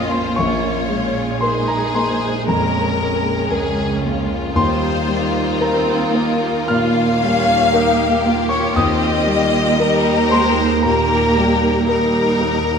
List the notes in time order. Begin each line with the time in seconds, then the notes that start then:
Already playing: A#1 F2 A#2 G#3 A#3 C#4 F4 A#4 D#5 C#6 D#6
0.11 C5 C6
0.36 A#1 A#3 C#4 C#5 C#6
0.88 G#3
1.41 D#4 G#4 A#4 C5 C6
1.68 A#4 A#5
1.94 A#3 C5 C6
2.48 F2 C#4 A#4 A#5
3.00 G#3 C#4
3.51 C#2 G#4 A#4
4.03 A#3 F4
4.55 D#2 G3 D#4 C5 C6
5.08 G3 A#3
5.60 C4 A#4 A#5
6.14 A#3
6.68 A#2 A#3 F4 F5 F6
7.21 G3 C#4
7.73 D#4 G4 A#4
8.24 A#3 F4
8.49 C#5 C#6
8.76 D#2 C4 D#5 D#6
9.26 G3 A#3
9.78 G3 G4 A#4
10.31 G#3 A#3 C5 C6
10.82 A#2 A#3 G4 A#4 A#5
11.37 G3
11.87 G3 D#4 A#4
12.41 A#3